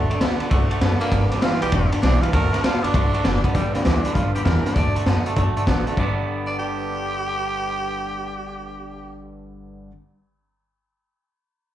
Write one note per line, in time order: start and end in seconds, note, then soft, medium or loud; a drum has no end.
0.00 0.11 D3 loud
0.00 0.11 A3 medium
0.00 0.11 D4 loud
0.00 0.11 F#4 medium
0.10 0.19 D3 medium
0.10 0.20 A3 medium
0.10 0.21 D4 medium
0.10 0.21 F#4 medium
0.10 0.21 A4 medium
0.10 0.17 A4 medium
0.10 0.17 D5 medium
0.10 0.18 F#5 loud
0.10 muted upright bass stroke medium
0.10 ride medium
0.20 0.37 D2 medium
0.20 0.38 D3 medium
0.20 0.40 D3 loud
0.20 0.41 A3 loud
0.20 0.39 B3 loud
0.20 0.41 D4 loud
0.20 0.40 F#4 loud
0.20 0.33 A4 loud
0.20 0.40 A4 loud
0.20 0.34 D5 medium
0.20 0.34 E5 loud
0.20 snare loud
0.20 ride medium
0.40 0.49 F#2 medium
0.40 0.49 D3 medium
0.40 0.50 B3 medium
0.40 0.50 D4 medium
0.40 0.52 F#4 medium
0.40 0.51 A4 medium
0.40 0.47 A4 medium
0.40 0.48 D5 medium
0.40 0.48 F#5 loud
0.40 ride medium
0.50 0.67 C2 medium
0.50 0.68 D3 loud
0.50 0.69 A3 medium
0.50 0.71 A3 medium
0.50 0.71 D4 medium
0.50 0.70 F#4 medium
0.50 0.63 A4 loud
0.50 0.68 A4 medium
0.50 0.64 D5 loud
0.50 0.64 F#5 loud
0.50 kick loud
0.50 ride medium
0.70 0.80 D3 medium
0.70 0.80 A3 medium
0.70 0.81 D4 soft
0.70 0.82 F#4 medium
0.70 0.81 A4 medium
0.70 0.78 A4 medium
0.70 0.78 D5 medium
0.70 0.78 F#5 loud
0.70 muted upright bass stroke medium
0.70 ride medium
0.81 0.97 F#2 medium
0.81 1.01 D3 loud
0.81 0.99 D3 loud
0.81 1.01 A3 loud
0.81 0.99 B3 loud
0.81 1.01 D4 loud
0.81 1.01 F#4 medium
0.81 0.94 A4 medium
0.81 1.00 A4 loud
0.81 0.94 D5 medium
0.81 0.94 F#5 loud
0.81 snare loud
0.81 ride medium
1.00 1.11 D3 medium
1.00 1.33 A#3 loud
1.00 1.11 B3 medium
1.00 1.12 D4 soft
1.00 1.12 F#4 medium
1.00 1.12 A4 medium
1.00 1.08 A4 medium
1.00 1.08 D5 medium
1.00 1.08 F#5 medium
1.00 muted upright bass stroke medium
1.00 ride medium
1.12 1.28 G1 medium
1.12 1.32 G2 medium
1.12 1.30 G2 medium
1.12 1.32 D3 medium
1.12 1.30 D3 medium
1.12 1.32 G3 medium
1.12 1.32 B3 medium
1.12 1.31 D4 loud
1.12 1.30 G4 medium
1.12 1.24 B4 medium
1.12 1.24 D5 medium
1.12 1.24 G5 loud
1.12 kick loud
1.12 snare soft
1.12 ride medium
1.31 1.42 G2 medium
1.31 1.42 D3 medium
1.31 1.42 G3 soft
1.31 1.42 B3 medium
1.31 1.44 D4 medium
1.31 1.43 D4 medium
1.31 1.42 G4 medium
1.31 1.38 B4 medium
1.31 1.38 D5 medium
1.31 1.38 G5 medium
1.31 muted upright bass stroke medium
1.31 snare soft
1.31 ride medium
1.41 1.58 G1 loud
1.41 1.62 G2 medium
1.41 1.60 G2 medium
1.41 1.62 D3 medium
1.41 1.61 E3 loud
1.41 1.63 G3 medium
1.41 1.62 B3 loud
1.41 1.61 D4 medium
1.41 1.61 F4 loud
1.41 1.61 G4 loud
1.41 1.53 B4 medium
1.41 1.53 D5 medium
1.41 1.54 F#5 medium
1.41 snare loud
1.41 ride medium
1.61 1.71 B1 medium
1.61 1.71 G2 medium
1.61 1.72 E3 medium
1.61 1.71 G3 soft
1.61 1.72 B3 soft
1.61 1.72 D4 medium
1.61 1.72 G4 medium
1.61 1.91 G4 loud
1.61 1.68 B4 medium
1.61 1.68 D5 medium
1.61 1.68 G5 medium
1.61 ride medium
1.72 1.89 E1 medium
1.72 1.90 G2 medium
1.72 1.91 D3 loud
1.72 1.90 G4 medium
1.72 1.84 B4 loud
1.72 1.84 D5 medium
1.72 1.84 G5 loud
1.72 kick loud
1.72 snare soft
1.72 ride medium
1.91 2.02 G2 medium
1.91 2.02 D3 medium
1.91 2.01 G3 soft
1.91 2.01 B3 soft
1.91 2.02 D4 medium
1.91 2.02 G4 medium
1.91 1.98 B4 medium
1.91 1.98 D5 medium
1.91 1.99 G5 medium
1.91 muted upright bass stroke medium
1.91 ride medium
2.01 2.19 B1 loud
2.01 2.22 G2 medium
2.01 2.21 G2 medium
2.01 2.22 D3 medium
2.01 2.21 E3 loud
2.01 2.22 G3 medium
2.01 2.22 B3 medium
2.01 2.23 D4 loud
2.01 2.22 D4 medium
2.01 2.20 G4 medium
2.01 2.14 B4 medium
2.01 2.14 D5 medium
2.01 2.14 G5 medium
2.01 snare loud
2.01 ride medium
2.22 2.32 G2 medium
2.22 2.32 E3 medium
2.22 2.32 G3 soft
2.22 2.33 B3 medium
2.22 2.33 D4 medium
2.22 2.32 F4 medium
2.22 2.33 G4 medium
2.22 2.29 B4 medium
2.22 2.29 D5 medium
2.22 2.29 G5 medium
2.22 muted upright bass stroke medium
2.22 ride medium
2.32 2.50 D2 loud
2.32 2.52 D3 medium
2.32 2.51 D3 loud
2.32 2.53 A3 medium
2.32 2.51 A3 loud
2.32 2.53 D4 medium
2.32 2.52 F#4 medium
2.32 2.51 A4 medium
2.32 2.66 A#4 loud
2.32 2.44 D5 medium
2.32 2.45 F#5 medium
2.32 2.45 A5 loud
2.32 kick loud
2.32 snare soft
2.32 ride medium
2.52 2.62 D3 medium
2.52 2.63 A3 medium
2.52 2.63 D4 medium
2.52 2.63 F#4 medium
2.52 2.63 A4 medium
2.52 2.59 D5 medium
2.52 2.59 F#5 medium
2.52 2.59 A5 medium
2.52 muted upright bass stroke medium
2.52 snare soft
2.52 ride medium
2.63 2.80 D2 medium
2.63 2.83 D3 medium
2.63 2.81 D3 loud
2.63 2.83 A3 medium
2.63 2.82 B3 loud
2.63 2.83 D4 medium
2.63 2.85 F4 loud
2.63 2.83 F#4 loud
2.63 2.82 A4 medium
2.63 2.75 D5 medium
2.63 2.76 F#5 medium
2.63 2.76 A5 loud
2.63 snare loud
2.63 ride medium
2.83 2.92 F#2 medium
2.83 2.93 D3 medium
2.83 2.93 B3 medium
2.83 3.42 D4 loud
2.83 2.94 D4 soft
2.83 2.94 F#4 medium
2.83 2.94 A4 medium
2.83 2.89 D5 medium
2.83 2.90 F#5 medium
2.83 2.90 A5 medium
2.83 ride medium
2.94 3.10 C2 medium
2.94 3.11 D3 medium
2.94 3.11 A3 medium
2.94 3.14 D4 medium
2.94 3.14 F#4 medium
2.94 3.13 A4 medium
2.94 3.06 D5 medium
2.94 3.06 F#5 loud
2.94 3.06 A5 loud
2.94 kick loud
2.94 ride medium
3.14 3.23 D3 medium
3.14 3.23 A3 loud
3.14 3.24 D4 soft
3.14 3.24 F#4 medium
3.14 3.24 A4 medium
3.14 3.20 D5 medium
3.14 3.20 F#5 medium
3.14 3.21 A5 medium
3.14 muted upright bass stroke medium
3.14 ride medium
3.24 3.41 F#1 medium
3.24 3.42 D3 medium
3.24 3.44 D3 medium
3.24 3.44 A3 medium
3.24 3.42 B3 loud
3.24 3.45 F#4 loud
3.24 3.43 A4 loud
3.24 3.36 D5 medium
3.24 3.36 F#5 medium
3.24 3.36 A5 medium
3.24 snare loud
3.24 ride medium
3.44 3.53 D3 medium
3.44 3.53 B3 loud
3.44 3.55 D4 medium
3.44 3.56 F#4 medium
3.44 3.55 A4 medium
3.44 3.50 D5 medium
3.44 3.51 F#5 medium
3.44 3.51 A5 loud
3.44 muted upright bass stroke medium
3.44 kick medium
3.44 ride medium
3.54 3.67 G1 medium
3.54 3.72 G2 medium
3.54 3.75 G2 medium
3.54 3.72 D3 medium
3.54 3.75 D3 medium
3.54 3.75 G3 loud
3.54 3.75 G3 medium
3.54 3.75 B3 medium
3.54 3.75 D4 medium
3.54 3.74 G4 medium
3.54 3.67 D5 medium
3.54 3.67 G5 medium
3.54 3.67 B5 medium
3.54 kick loud
3.54 closed hi-hat medium
3.73 3.81 B1 medium
3.73 3.83 G2 medium
3.73 3.84 D3 medium
3.73 3.85 G3 soft
3.73 3.85 A#3 medium
3.73 3.86 B3 soft
3.73 3.86 D4 medium
3.73 3.85 G4 medium
3.73 3.81 D5 medium
3.73 3.81 G5 medium
3.73 3.81 B5 loud
3.73 snare soft
3.73 closed hi-hat medium
3.83 3.98 D2 medium
3.83 4.02 G2 medium
3.83 4.03 E3 loud
3.83 4.05 G3 medium
3.83 4.15 D4 medium
3.83 3.97 D5 medium
3.83 3.97 G5 medium
3.83 3.97 B5 medium
3.83 snare loud
3.83 closed hi-hat medium
3.87 4.06 B3 medium
3.87 4.05 D4 medium
3.87 4.04 G4 medium
4.05 4.14 G2 medium
4.05 4.15 D3 medium
4.05 4.17 G3 soft
4.05 4.16 B3 soft
4.05 4.16 D4 soft
4.05 4.16 G4 medium
4.05 4.11 D5 medium
4.05 4.11 G5 medium
4.05 4.12 B5 medium
4.05 muted upright bass stroke medium
4.05 closed hi-hat medium
4.14 4.33 G2 medium
4.14 4.36 G2 medium
4.14 4.33 D3 loud
4.14 4.36 D3 medium
4.14 4.36 G3 medium
4.14 4.36 B3 medium
4.14 4.34 F4 medium
4.14 4.26 D5 medium
4.14 4.27 G5 medium
4.14 4.27 B5 medium
4.14 kick loud
4.14 closed hi-hat medium
4.18 4.35 D4 medium
4.18 4.34 G4 medium
4.35 4.41 E2 loud
4.35 4.44 G2 medium
4.35 4.45 D3 medium
4.35 4.44 G3 soft
4.35 4.45 B3 soft
4.35 4.45 D4 soft
4.35 4.44 G4 medium
4.35 4.46 G4 soft
4.35 4.42 D5 medium
4.35 4.42 G5 medium
4.35 4.42 B5 medium
4.35 closed hi-hat medium
4.44 4.58 E2 medium
4.44 4.63 G2 medium
4.44 4.63 E3 loud
4.44 4.65 G3 medium
4.44 4.65 B3 medium
4.44 4.65 D4 medium
4.44 4.64 G4 medium
4.44 4.76 A#4 medium
4.44 4.57 D5 medium
4.44 4.58 G5 medium
4.44 4.58 B5 loud
4.44 kick medium
4.44 snare loud
4.44 closed hi-hat medium
4.65 4.75 G2 medium
4.65 4.75 D3 medium
4.65 4.76 G3 soft
4.65 4.76 B3 medium
4.65 4.76 D4 medium
4.65 4.76 G4 medium
4.65 4.72 D5 medium
4.65 4.72 G5 medium
4.65 4.72 B5 medium
4.65 muted upright bass stroke medium
4.65 snare soft
4.65 closed hi-hat medium
4.74 4.88 D2 medium
4.74 4.96 D3 medium
4.74 4.94 D3 medium
4.74 4.96 A3 medium
4.74 4.94 A3 medium
4.74 4.96 D4 medium
4.74 4.96 F#4 medium
4.74 4.94 A4 medium
4.74 4.94 D5 loud
4.74 4.87 D5 medium
4.74 4.88 F#5 medium
4.74 4.88 A5 loud
4.74 kick loud
4.74 closed hi-hat medium
4.95 5.05 D3 medium
4.95 5.05 A3 medium
4.95 5.06 D4 soft
4.95 5.07 F#4 medium
4.95 5.06 A4 medium
4.95 5.02 D5 loud
4.95 5.02 F#5 medium
4.95 5.02 A5 loud
4.95 muted upright bass stroke medium
4.95 closed hi-hat medium
5.06 5.18 F#2 medium
5.06 5.24 D3 medium
5.06 5.26 A3 medium
5.06 5.24 B3 medium
5.06 5.27 D4 medium
5.06 5.26 F#4 medium
5.06 5.24 A4 medium
5.06 5.18 D5 loud
5.06 5.18 F#5 medium
5.06 5.19 A5 loud
5.06 snare loud
5.06 closed hi-hat medium
5.26 5.35 D3 medium
5.26 5.35 A3 medium
5.26 5.36 D4 soft
5.26 5.36 F#4 medium
5.26 5.36 A4 medium
5.26 5.33 D5 loud
5.26 5.33 F#5 medium
5.26 5.33 A5 loud
5.26 muted upright bass stroke medium
5.26 closed hi-hat medium
5.36 5.49 F#2 medium
5.36 5.56 D3 medium
5.36 5.54 D3 medium
5.36 5.56 A3 medium
5.36 5.54 A3 medium
5.36 5.57 D4 medium
5.36 5.56 F#4 medium
5.36 5.55 A4 medium
5.36 5.49 D5 medium
5.36 5.49 F#5 medium
5.36 5.49 A5 loud
5.36 kick loud
5.36 closed hi-hat medium
5.56 5.65 D3 medium
5.56 5.66 A3 medium
5.56 5.66 D4 medium
5.56 5.67 F#4 soft
5.56 5.67 A4 medium
5.56 5.63 D5 medium
5.56 5.63 F#5 medium
5.56 5.63 A5 loud
5.56 muted upright bass stroke medium
5.56 closed hi-hat medium
5.66 5.80 A1 medium
5.66 5.85 D3 loud
5.66 5.87 A3 medium
5.66 5.85 B3 medium
5.66 5.87 F#4 medium
5.66 5.86 A4 medium
5.66 5.80 D5 loud
5.66 5.80 F#5 loud
5.66 5.80 A5 loud
5.66 kick medium
5.66 snare loud
5.66 closed hi-hat medium
5.87 5.97 D3 medium
5.87 5.97 A3 medium
5.87 5.99 D4 soft
5.87 5.99 F#4 medium
5.87 5.98 A4 medium
5.87 5.94 D5 medium
5.87 5.94 F#5 medium
5.87 5.94 A5 medium
5.87 muted upright bass stroke medium
5.87 closed hi-hat medium
5.96 9.87 G1 medium
5.96 9.90 G2 medium
5.96 9.91 G2 medium
5.96 9.91 D3 medium
5.96 9.91 G3 medium
5.96 9.92 G3 medium
5.96 9.86 D5 medium
5.96 9.87 G5 medium
5.96 9.88 B5 medium
5.96 kick loud
6.00 9.92 B3 loud
6.00 9.92 B3 medium
6.00 9.92 D4 medium
6.00 9.93 D4 medium
6.00 9.93 B4 medium
6.47 6.58 D5 medium
6.59 9.17 G4 loud